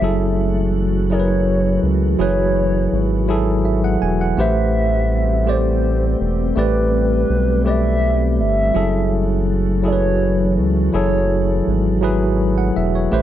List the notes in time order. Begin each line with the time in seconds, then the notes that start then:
Already playing: A3 E5
0.01 F#1 E3 F#3 E4 F#4 G#4 A4
1.10 F#3 E4 G#4 A#4 C#5
1.20 B4
1.83 C#2
2.19 F#1 F#3 E4 G#4 B4 C#5
2.93 G#1
3.28 F#3 E4 G#4 A4
3.65 E5
3.84 F#5
4.02 E1 G#5
4.21 F#5
4.37 A1 G3 A3 C4 G4 B4 C5 E5
5.46 A3 G4 C5 D5
6.21 E1
6.56 A1 A3 G4 B4 D5
7.30 B1
7.65 A3 G4 B4 D5 E5
8.39 G1 E5
8.74 F#1 E3 F#3 A3 E4 F#4 G#4 A4
9.83 F#3 E4 G#4 A4
9.87 C#5
9.92 B4
10.58 C#2
10.92 F#1 F#3 E4 G#4 A4 C#5
11.68 G#1
12.01 F#3 E4 G#4 B4
12.58 F#5
12.76 E1 E5
12.95 C#5
13.11 A1 A3 G4 B4 C5 E5